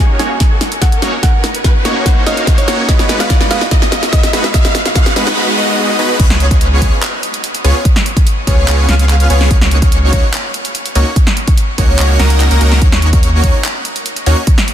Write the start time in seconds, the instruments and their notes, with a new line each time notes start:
Already playing: supersaw synth A#3 C#4 D#4 F#4 C#5, riser
0.19 supersaw synth A#3 C#4 D#4 F#4 C#5, synth pluck G#5, snare, closed hi-hat
0.40 kick, snare, closed hi-hat
0.61 snare, closed hi-hat
0.72 closed hi-hat
0.82 synth pluck F#5, kick, snare, closed hi-hat
0.92 closed hi-hat
1.02 supersaw synth A#3 C#4 D#4 F#4 C#5, snare, closed hi-hat
1.23 synth pluck F#5, kick, snare, closed hi-hat
1.44 snare, closed hi-hat
1.55 closed hi-hat
1.64 kick, snare, closed hi-hat
1.85 supersaw synth A#3 C#4 D#4 F#4 C#5, snare, closed hi-hat
2.06 supersaw synth A#3 C#4 D#4 F#4 C#5, synth pluck F#5, kick, snare, closed hi-hat
2.26 supersaw synth A#3 C#4 D#4 F#4 F5, synth pluck D#5, snare, closed hi-hat
2.37 closed hi-hat
2.47 kick, snare, closed hi-hat
2.58 synth pluck C#5, closed hi-hat
2.68 supersaw synth A#3 C#4 D#4 F#4 C#5, snare, closed hi-hat
2.89 supersaw synth G#3 B3 B4, synth pluck D#5, kick, snare, closed hi-hat
2.99 snare
3.09 snare, closed hi-hat
3.20 synth pluck F5, snare, closed hi-hat
3.30 kick, snare, closed hi-hat
3.41 snare
3.51 supersaw synth G#3 B3 D#4 F#4 B4, synth pluck F5, snare, closed hi-hat
3.61 snare
3.71 kick, snare, closed hi-hat
3.82 snare
3.92 snare, closed hi-hat
4.03 snare, closed hi-hat
4.13 synth pluck D#5, kick, snare, closed hi-hat
4.23 snare, closed hi-hat
4.33 supersaw synth G#3 B3 D#4 F#4 B4, snare, closed hi-hat
4.44 snare
4.54 synth pluck D#5, kick, snare, closed hi-hat, noise sweep
4.65 snare
4.75 snare, closed hi-hat
4.86 snare, closed hi-hat
4.95 kick, snare, closed hi-hat
5.06 snare
5.16 supersaw synth G#3 B3 D#4 F#4 B4, snare, closed hi-hat
5.27 snare
5.37 supersaw synth G#3 B3 D#4 F#4 B4
5.57 supersaw synth G#3 B3 D#4 F#4 D#5
5.99 supersaw synth G#3 B3 D#4 F#4 B4
6.20 sub bass C#2, supersaw synth B3 C#4 F4 G#4 C#5, digital synth lead C#5, kick, closed hi-hat, crash
6.30 snare
6.40 closed hi-hat
6.51 kick, closed hi-hat
6.61 closed hi-hat
6.82 sub bass C#2, supersaw synth B3 C#4 F4 G#4 C#5, digital synth lead C#5, kick, closed hi-hat
7.02 clap, closed hi-hat
7.23 closed hi-hat
7.34 closed hi-hat
7.44 closed hi-hat
7.55 closed hi-hat
7.64 sub bass C#2, supersaw synth B3 C#4 F4 G#4 C#5, digital synth lead C#5, closed hi-hat
7.85 kick, closed hi-hat
7.96 snare
8.06 closed hi-hat
8.17 kick, closed hi-hat
8.27 closed hi-hat
8.47 sub bass C#2, supersaw synth B3 C#4 F4 G#4 C#5, digital synth lead C#5, kick, closed hi-hat
8.68 sub bass C#2, supersaw synth B3 C#4 F4 G#4 C#5, digital synth lead C#5, clap, closed hi-hat
8.89 sub bass C#2, supersaw synth B3 C#4 F4 G#4 F5, digital synth lead F5, snare, closed hi-hat
8.99 closed hi-hat
9.09 clap, closed hi-hat
9.20 closed hi-hat
9.30 sub bass C#2, supersaw synth B3 C#4 F4 G#4 C#5, digital synth lead C#5, closed hi-hat
9.41 snare
9.51 sub bass C#2, supersaw synth A#3 C#4 D#4 F#4 C#5, digital synth lead C#5, kick, closed hi-hat
9.61 snare
9.71 closed hi-hat
9.82 kick, closed hi-hat
9.92 closed hi-hat
10.13 sub bass C#2, supersaw synth A#3 C#4 D#4 F#4 C#5, digital synth lead C#5, kick, closed hi-hat
10.33 clap, closed hi-hat
10.54 closed hi-hat
10.65 closed hi-hat
10.75 closed hi-hat
10.86 closed hi-hat
10.95 sub bass C#2, supersaw synth A#3 C#4 D#4 F#4 C#5, digital synth lead C#5, closed hi-hat
11.16 kick, closed hi-hat
11.27 snare
11.37 closed hi-hat
11.48 kick, closed hi-hat
11.58 closed hi-hat
11.78 sub bass C#2, supersaw synth A#3 C#4 D#4 F#4 C#5, digital synth lead C#5, kick, closed hi-hat
11.99 sub bass C#2, supersaw synth A#3 C#4 D#4 F#4 C#5, digital synth lead C#5, clap, closed hi-hat
12.19 sub bass C#2, supersaw synth A#3 C#4 D#4 F#4 A#4, digital synth lead A#4, snare, closed hi-hat
12.30 closed hi-hat
12.40 clap, closed hi-hat
12.51 sub bass C#2, supersaw synth A#3 C#4 D#4 F#4 A#4, digital synth lead A#4, closed hi-hat
12.61 sub bass C#2, supersaw synth A#3 C#4 D#4 F#4 A#4, digital synth lead A#4, closed hi-hat
12.72 snare
12.82 sub bass D#2, digital synth lead C#5, kick, closed hi-hat
12.92 snare
13.02 closed hi-hat
13.13 kick, closed hi-hat
13.23 closed hi-hat
13.44 sub bass D#2, supersaw synth A#3 C#4 D#4 F#4 C#5, digital synth lead C#5, kick, closed hi-hat
13.64 clap, closed hi-hat
13.85 closed hi-hat
13.96 closed hi-hat
14.06 closed hi-hat
14.16 closed hi-hat
14.26 sub bass D#2, supersaw synth A#3 C#4 D#4 F#4 C#5, digital synth lead C#5, closed hi-hat
14.47 kick, closed hi-hat
14.58 snare
14.68 closed hi-hat